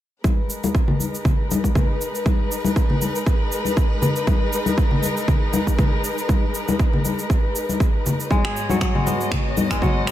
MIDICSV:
0, 0, Header, 1, 4, 480
1, 0, Start_track
1, 0, Key_signature, 5, "minor"
1, 0, Tempo, 504202
1, 232, Time_signature, 4, 2, 24, 8
1, 9628, End_track
2, 0, Start_track
2, 0, Title_t, "String section"
2, 0, Program_c, 0, 48
2, 232, Note_on_c, 0, 56, 72
2, 233, Note_on_c, 0, 70, 68
2, 234, Note_on_c, 0, 63, 67
2, 234, Note_on_c, 0, 71, 81
2, 7874, Note_off_c, 0, 56, 0
2, 7874, Note_off_c, 0, 70, 0
2, 7875, Note_off_c, 0, 63, 0
2, 7875, Note_off_c, 0, 71, 0
2, 7912, Note_on_c, 0, 44, 76
2, 7912, Note_on_c, 0, 66, 68
2, 7913, Note_on_c, 0, 59, 65
2, 7913, Note_on_c, 0, 75, 84
2, 7914, Note_on_c, 0, 73, 68
2, 9628, Note_off_c, 0, 44, 0
2, 9628, Note_off_c, 0, 59, 0
2, 9628, Note_off_c, 0, 66, 0
2, 9628, Note_off_c, 0, 73, 0
2, 9628, Note_off_c, 0, 75, 0
2, 9628, End_track
3, 0, Start_track
3, 0, Title_t, "Kora"
3, 0, Program_c, 1, 46
3, 7908, Note_on_c, 1, 56, 79
3, 8041, Note_on_c, 1, 68, 94
3, 8282, Note_on_c, 1, 54, 63
3, 8380, Note_off_c, 1, 54, 0
3, 8391, Note_on_c, 1, 54, 77
3, 8511, Note_off_c, 1, 56, 0
3, 8522, Note_on_c, 1, 56, 66
3, 8631, Note_on_c, 1, 59, 71
3, 9230, Note_off_c, 1, 56, 0
3, 9242, Note_on_c, 1, 56, 71
3, 9339, Note_off_c, 1, 68, 0
3, 9340, Note_off_c, 1, 54, 0
3, 9351, Note_on_c, 1, 54, 75
3, 9588, Note_off_c, 1, 59, 0
3, 9592, Note_on_c, 1, 59, 72
3, 9628, Note_off_c, 1, 54, 0
3, 9628, Note_off_c, 1, 56, 0
3, 9628, Note_off_c, 1, 59, 0
3, 9628, End_track
4, 0, Start_track
4, 0, Title_t, "Drums"
4, 231, Note_on_c, 9, 36, 102
4, 232, Note_on_c, 9, 63, 74
4, 237, Note_on_c, 9, 82, 34
4, 326, Note_off_c, 9, 36, 0
4, 328, Note_off_c, 9, 63, 0
4, 332, Note_off_c, 9, 82, 0
4, 476, Note_on_c, 9, 82, 81
4, 571, Note_off_c, 9, 82, 0
4, 607, Note_on_c, 9, 63, 87
4, 607, Note_on_c, 9, 82, 46
4, 702, Note_off_c, 9, 63, 0
4, 703, Note_off_c, 9, 82, 0
4, 710, Note_on_c, 9, 36, 105
4, 717, Note_on_c, 9, 82, 35
4, 805, Note_off_c, 9, 36, 0
4, 812, Note_off_c, 9, 82, 0
4, 836, Note_on_c, 9, 64, 95
4, 931, Note_off_c, 9, 64, 0
4, 952, Note_on_c, 9, 63, 51
4, 956, Note_on_c, 9, 82, 81
4, 1048, Note_off_c, 9, 63, 0
4, 1051, Note_off_c, 9, 82, 0
4, 1090, Note_on_c, 9, 82, 48
4, 1186, Note_off_c, 9, 82, 0
4, 1188, Note_on_c, 9, 64, 89
4, 1190, Note_on_c, 9, 36, 102
4, 1199, Note_on_c, 9, 82, 36
4, 1284, Note_off_c, 9, 64, 0
4, 1286, Note_off_c, 9, 36, 0
4, 1294, Note_off_c, 9, 82, 0
4, 1437, Note_on_c, 9, 82, 83
4, 1441, Note_on_c, 9, 63, 81
4, 1532, Note_off_c, 9, 82, 0
4, 1536, Note_off_c, 9, 63, 0
4, 1562, Note_on_c, 9, 36, 53
4, 1562, Note_on_c, 9, 63, 58
4, 1569, Note_on_c, 9, 82, 49
4, 1657, Note_off_c, 9, 36, 0
4, 1657, Note_off_c, 9, 63, 0
4, 1664, Note_off_c, 9, 82, 0
4, 1669, Note_on_c, 9, 64, 92
4, 1670, Note_on_c, 9, 36, 109
4, 1679, Note_on_c, 9, 82, 37
4, 1764, Note_off_c, 9, 64, 0
4, 1765, Note_off_c, 9, 36, 0
4, 1774, Note_off_c, 9, 82, 0
4, 1916, Note_on_c, 9, 82, 87
4, 2011, Note_off_c, 9, 82, 0
4, 2047, Note_on_c, 9, 82, 45
4, 2142, Note_off_c, 9, 82, 0
4, 2149, Note_on_c, 9, 36, 106
4, 2149, Note_on_c, 9, 63, 79
4, 2155, Note_on_c, 9, 82, 34
4, 2244, Note_off_c, 9, 63, 0
4, 2245, Note_off_c, 9, 36, 0
4, 2250, Note_off_c, 9, 82, 0
4, 2395, Note_on_c, 9, 82, 84
4, 2490, Note_off_c, 9, 82, 0
4, 2517, Note_on_c, 9, 63, 87
4, 2526, Note_on_c, 9, 82, 49
4, 2612, Note_off_c, 9, 63, 0
4, 2621, Note_off_c, 9, 82, 0
4, 2629, Note_on_c, 9, 36, 111
4, 2632, Note_on_c, 9, 82, 37
4, 2724, Note_off_c, 9, 36, 0
4, 2727, Note_off_c, 9, 82, 0
4, 2759, Note_on_c, 9, 64, 88
4, 2854, Note_off_c, 9, 64, 0
4, 2871, Note_on_c, 9, 63, 57
4, 2872, Note_on_c, 9, 82, 90
4, 2966, Note_off_c, 9, 63, 0
4, 2968, Note_off_c, 9, 82, 0
4, 3003, Note_on_c, 9, 82, 51
4, 3098, Note_off_c, 9, 82, 0
4, 3108, Note_on_c, 9, 36, 109
4, 3113, Note_on_c, 9, 82, 36
4, 3203, Note_off_c, 9, 36, 0
4, 3208, Note_off_c, 9, 82, 0
4, 3351, Note_on_c, 9, 82, 84
4, 3447, Note_off_c, 9, 82, 0
4, 3474, Note_on_c, 9, 63, 62
4, 3484, Note_on_c, 9, 82, 51
4, 3569, Note_off_c, 9, 63, 0
4, 3579, Note_off_c, 9, 82, 0
4, 3588, Note_on_c, 9, 36, 115
4, 3591, Note_on_c, 9, 82, 38
4, 3683, Note_off_c, 9, 36, 0
4, 3686, Note_off_c, 9, 82, 0
4, 3828, Note_on_c, 9, 64, 103
4, 3831, Note_on_c, 9, 82, 85
4, 3923, Note_off_c, 9, 64, 0
4, 3927, Note_off_c, 9, 82, 0
4, 3961, Note_on_c, 9, 82, 48
4, 4057, Note_off_c, 9, 82, 0
4, 4065, Note_on_c, 9, 63, 82
4, 4068, Note_on_c, 9, 36, 116
4, 4070, Note_on_c, 9, 82, 35
4, 4160, Note_off_c, 9, 63, 0
4, 4163, Note_off_c, 9, 36, 0
4, 4165, Note_off_c, 9, 82, 0
4, 4311, Note_on_c, 9, 82, 88
4, 4406, Note_off_c, 9, 82, 0
4, 4435, Note_on_c, 9, 63, 88
4, 4441, Note_on_c, 9, 82, 50
4, 4531, Note_off_c, 9, 63, 0
4, 4537, Note_off_c, 9, 82, 0
4, 4547, Note_on_c, 9, 36, 116
4, 4551, Note_on_c, 9, 82, 37
4, 4642, Note_off_c, 9, 36, 0
4, 4646, Note_off_c, 9, 82, 0
4, 4676, Note_on_c, 9, 64, 97
4, 4771, Note_off_c, 9, 64, 0
4, 4784, Note_on_c, 9, 63, 53
4, 4790, Note_on_c, 9, 82, 85
4, 4879, Note_off_c, 9, 63, 0
4, 4885, Note_off_c, 9, 82, 0
4, 4922, Note_on_c, 9, 82, 49
4, 5018, Note_off_c, 9, 82, 0
4, 5025, Note_on_c, 9, 64, 90
4, 5027, Note_on_c, 9, 36, 113
4, 5030, Note_on_c, 9, 82, 38
4, 5120, Note_off_c, 9, 64, 0
4, 5123, Note_off_c, 9, 36, 0
4, 5125, Note_off_c, 9, 82, 0
4, 5269, Note_on_c, 9, 63, 92
4, 5270, Note_on_c, 9, 82, 91
4, 5364, Note_off_c, 9, 63, 0
4, 5365, Note_off_c, 9, 82, 0
4, 5399, Note_on_c, 9, 36, 57
4, 5399, Note_on_c, 9, 63, 57
4, 5403, Note_on_c, 9, 82, 51
4, 5494, Note_off_c, 9, 36, 0
4, 5494, Note_off_c, 9, 63, 0
4, 5498, Note_off_c, 9, 82, 0
4, 5508, Note_on_c, 9, 36, 116
4, 5513, Note_on_c, 9, 64, 83
4, 5513, Note_on_c, 9, 82, 38
4, 5603, Note_off_c, 9, 36, 0
4, 5608, Note_off_c, 9, 64, 0
4, 5608, Note_off_c, 9, 82, 0
4, 5753, Note_on_c, 9, 82, 93
4, 5848, Note_off_c, 9, 82, 0
4, 5884, Note_on_c, 9, 82, 49
4, 5979, Note_off_c, 9, 82, 0
4, 5988, Note_on_c, 9, 63, 76
4, 5989, Note_on_c, 9, 36, 109
4, 5992, Note_on_c, 9, 82, 35
4, 6083, Note_off_c, 9, 63, 0
4, 6084, Note_off_c, 9, 36, 0
4, 6087, Note_off_c, 9, 82, 0
4, 6231, Note_on_c, 9, 82, 88
4, 6326, Note_off_c, 9, 82, 0
4, 6362, Note_on_c, 9, 82, 48
4, 6365, Note_on_c, 9, 63, 90
4, 6457, Note_off_c, 9, 82, 0
4, 6460, Note_off_c, 9, 63, 0
4, 6468, Note_on_c, 9, 36, 111
4, 6471, Note_on_c, 9, 82, 36
4, 6564, Note_off_c, 9, 36, 0
4, 6566, Note_off_c, 9, 82, 0
4, 6602, Note_on_c, 9, 64, 97
4, 6697, Note_off_c, 9, 64, 0
4, 6712, Note_on_c, 9, 82, 86
4, 6713, Note_on_c, 9, 63, 62
4, 6807, Note_off_c, 9, 82, 0
4, 6808, Note_off_c, 9, 63, 0
4, 6844, Note_on_c, 9, 82, 52
4, 6939, Note_off_c, 9, 82, 0
4, 6948, Note_on_c, 9, 36, 109
4, 6954, Note_on_c, 9, 82, 36
4, 7044, Note_off_c, 9, 36, 0
4, 7050, Note_off_c, 9, 82, 0
4, 7194, Note_on_c, 9, 82, 89
4, 7289, Note_off_c, 9, 82, 0
4, 7322, Note_on_c, 9, 63, 64
4, 7326, Note_on_c, 9, 82, 49
4, 7417, Note_off_c, 9, 63, 0
4, 7421, Note_off_c, 9, 82, 0
4, 7428, Note_on_c, 9, 36, 121
4, 7436, Note_on_c, 9, 82, 38
4, 7523, Note_off_c, 9, 36, 0
4, 7531, Note_off_c, 9, 82, 0
4, 7675, Note_on_c, 9, 82, 85
4, 7676, Note_on_c, 9, 64, 86
4, 7770, Note_off_c, 9, 82, 0
4, 7771, Note_off_c, 9, 64, 0
4, 7807, Note_on_c, 9, 82, 50
4, 7902, Note_off_c, 9, 82, 0
4, 7907, Note_on_c, 9, 36, 106
4, 7910, Note_on_c, 9, 63, 79
4, 7916, Note_on_c, 9, 82, 34
4, 8003, Note_off_c, 9, 36, 0
4, 8005, Note_off_c, 9, 63, 0
4, 8011, Note_off_c, 9, 82, 0
4, 8042, Note_on_c, 9, 26, 81
4, 8137, Note_off_c, 9, 26, 0
4, 8155, Note_on_c, 9, 82, 80
4, 8250, Note_off_c, 9, 82, 0
4, 8277, Note_on_c, 9, 63, 92
4, 8286, Note_on_c, 9, 82, 50
4, 8372, Note_off_c, 9, 63, 0
4, 8382, Note_off_c, 9, 82, 0
4, 8387, Note_on_c, 9, 36, 106
4, 8389, Note_on_c, 9, 26, 68
4, 8395, Note_on_c, 9, 82, 36
4, 8483, Note_off_c, 9, 36, 0
4, 8485, Note_off_c, 9, 26, 0
4, 8490, Note_off_c, 9, 82, 0
4, 8520, Note_on_c, 9, 64, 88
4, 8615, Note_off_c, 9, 64, 0
4, 8630, Note_on_c, 9, 63, 55
4, 8635, Note_on_c, 9, 82, 82
4, 8726, Note_off_c, 9, 63, 0
4, 8730, Note_off_c, 9, 82, 0
4, 8765, Note_on_c, 9, 82, 46
4, 8861, Note_off_c, 9, 82, 0
4, 8867, Note_on_c, 9, 36, 101
4, 8868, Note_on_c, 9, 64, 94
4, 8869, Note_on_c, 9, 26, 82
4, 8874, Note_on_c, 9, 82, 36
4, 8962, Note_off_c, 9, 36, 0
4, 8963, Note_off_c, 9, 64, 0
4, 8964, Note_off_c, 9, 26, 0
4, 8969, Note_off_c, 9, 82, 0
4, 9113, Note_on_c, 9, 82, 90
4, 9114, Note_on_c, 9, 63, 101
4, 9208, Note_off_c, 9, 82, 0
4, 9209, Note_off_c, 9, 63, 0
4, 9238, Note_on_c, 9, 63, 62
4, 9239, Note_on_c, 9, 36, 56
4, 9241, Note_on_c, 9, 26, 70
4, 9247, Note_on_c, 9, 82, 49
4, 9333, Note_off_c, 9, 63, 0
4, 9334, Note_off_c, 9, 36, 0
4, 9337, Note_off_c, 9, 26, 0
4, 9342, Note_off_c, 9, 82, 0
4, 9348, Note_on_c, 9, 36, 111
4, 9349, Note_on_c, 9, 64, 85
4, 9356, Note_on_c, 9, 82, 38
4, 9443, Note_off_c, 9, 36, 0
4, 9444, Note_off_c, 9, 64, 0
4, 9451, Note_off_c, 9, 82, 0
4, 9590, Note_on_c, 9, 26, 85
4, 9595, Note_on_c, 9, 82, 87
4, 9628, Note_off_c, 9, 26, 0
4, 9628, Note_off_c, 9, 82, 0
4, 9628, End_track
0, 0, End_of_file